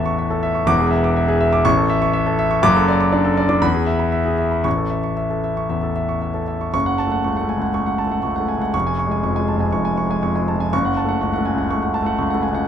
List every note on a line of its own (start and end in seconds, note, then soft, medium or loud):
0.00 0.71 A1 medium
0.00 0.67 E2 medium
0.00 0.30 A4 medium
0.00 0.18 E5 medium
0.00 0.06 C#6 medium
0.06 0.26 C#6 medium
0.18 0.39 E5 medium
0.30 0.51 A4 medium
0.43 0.63 E5 medium
0.55 0.68 C#6 medium
0.66 1.62 E1 medium
0.66 1.62 E2 medium
0.66 0.87 D6 loud
0.80 1.00 G#4 medium
0.91 1.11 E5 medium
1.04 1.24 D6 medium
1.16 1.36 E5 medium
1.28 1.48 G#4 medium
1.41 1.61 E5 medium
1.53 1.65 D6 medium
1.65 2.61 A1 loud
1.65 1.85 C#6 loud
1.77 1.97 A4 medium
1.90 2.10 E5 medium
2.02 2.22 C#6 medium
2.13 2.34 E5 medium
2.26 2.47 A4 medium
2.39 2.59 E5 medium
2.51 2.64 C#6 medium
2.62 3.59 F#1 medium
2.62 3.59 F#2 loud
2.62 2.83 D6 loud
2.76 2.96 A4 medium
2.88 3.08 D5 medium
3.00 3.21 D6 medium
3.12 3.33 D4 medium
3.12 3.33 D5 medium
3.25 3.45 A4 medium
3.37 3.58 D5 medium
3.49 3.62 D4 medium
3.49 3.62 D6 medium
3.62 4.61 E2 medium
3.62 3.82 B5 loud
3.74 3.95 G#4 medium
3.86 4.07 E5 medium
3.99 4.20 B5 medium
4.12 4.33 E5 medium
4.25 4.46 G#4 medium
4.38 4.59 E5 medium
4.51 4.65 B5 medium
4.64 5.67 A1 medium
4.64 4.86 C#6 medium
4.77 4.99 A4 medium
4.90 5.12 E5 medium
5.04 5.25 C#6 medium
5.17 5.38 E5 medium
5.30 5.52 A4 medium
5.44 5.65 E5 medium
5.57 5.78 C#6 medium
5.70 5.91 E2 soft
5.70 5.91 E5 medium
5.83 6.04 A4 soft
5.96 6.17 E5 medium
6.09 6.30 C#6 medium
6.22 6.43 E5 medium
6.34 6.55 A4 medium
6.48 6.69 E5 soft
6.61 6.72 C#6 medium
6.74 7.71 F#1 medium
6.74 6.94 C#6 loud
6.86 7.07 F#5 medium
6.98 7.19 A5 medium
7.07 7.34 A3 medium
7.12 7.32 F#5 medium
7.24 7.51 C#2 soft
7.24 7.44 C#6 medium
7.37 7.57 F#5 medium
7.41 7.67 A3 medium
7.49 7.62 G#5 medium
7.57 7.84 C#2 medium
7.62 7.82 F#5 medium
7.74 8.01 A3 medium
7.74 7.94 C#6 medium
7.86 8.06 F#5 medium
7.98 8.19 A5 medium
8.07 8.34 A3 medium
8.11 8.31 F#5 medium
8.23 8.50 C#2 medium
8.23 8.43 C#6 medium
8.36 8.56 F#5 medium
8.40 8.67 A3 medium
8.48 8.61 G#5 medium
8.57 8.74 C#2 medium
8.61 8.74 F#5 medium
8.74 9.70 F1 medium
8.74 8.94 C#6 medium
8.87 9.06 G#5 medium
8.99 9.19 C#6 medium
9.07 9.33 G#3 medium
9.11 9.31 G#5 medium
9.23 9.50 F2 medium
9.23 9.43 C#6 medium
9.36 9.66 G#3 medium
9.36 9.56 G#5 medium
9.48 9.61 A5 medium
9.56 9.83 F2 medium
9.60 9.80 G#5 medium
9.72 10.69 F1 medium
9.72 9.93 C#6 medium
9.85 10.05 G#5 medium
9.97 10.18 C#6 medium
10.06 10.33 G#3 medium
10.11 10.31 G#5 medium
10.23 10.49 F2 medium
10.23 10.43 C#6 medium
10.36 10.66 G#3 medium
10.36 10.55 G#5 medium
10.48 10.60 A5 medium
10.56 10.73 F2 medium
10.60 10.73 G#5 medium
10.73 11.68 F#1 medium
10.73 10.92 C#6 loud
10.85 11.04 F#5 medium
10.97 11.17 A5 medium
11.05 11.31 A3 medium
11.05 11.29 F#5 medium
11.21 11.48 C#2 medium
11.21 11.41 C#6 medium
11.33 11.53 F#5 medium
11.38 11.64 A3 medium
11.46 11.58 G#5 medium
11.54 11.80 C#2 medium
11.54 11.78 F#5 medium
11.70 11.96 A3 medium
11.70 11.90 C#6 medium
11.82 12.02 F#5 medium
11.94 12.14 A5 medium
12.03 12.28 A3 medium
12.03 12.26 F#5 medium
12.18 12.44 C#2 medium
12.18 12.38 C#6 medium
12.30 12.50 F#5 medium
12.35 12.61 A3 medium
12.43 12.55 G#5 medium
12.51 12.68 C#2 medium
12.51 12.67 F#5 medium